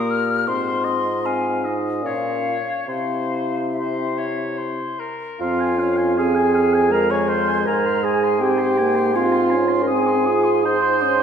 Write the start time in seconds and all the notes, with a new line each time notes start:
Already playing: A#2 A#3 G4 A#4 D#6
0.10 F6
0.47 G#2 C4 F4 C5 C6
0.84 D#5
1.23 C4 F5 G#5
1.63 D#4 D#5
2.03 A#2 C#4 F4 C#5 F5
2.86 C3 C4 E4 C5 F5
3.74 C5 E5
4.19 C#5
4.58 C5
4.99 A#4
5.39 F2 C4 F4 F5
5.60 G#5
5.78 C#4 F5
5.97 G#5
6.16 C4 G#4 F5 G#5
6.35 G#5
6.55 F5
6.74 G#5
6.90 G#3 A#4 F5 A#5
7.10 C#5 G#5 C#6
7.28 C5 F5 C6
7.48 G#5
7.66 G#2 A#4 G#5 A#5
7.85 C6
8.03 G#4 G#5
8.24 C6
8.40 C4 G4 G5
8.44 G#5
8.58 C6
8.78 A#3 G#5
8.95 C6
9.14 C4 F4 F5 G#5
9.32 C6
9.50 C#4 G#5
9.69 C6
9.82 A#4
9.87 C4 G#4 G#5 D#6
10.07 C6
10.26 F4 D#6
10.44 C6
10.63 D#4 C5 C6 D#6
10.82 C6
11.01 C#4 D#6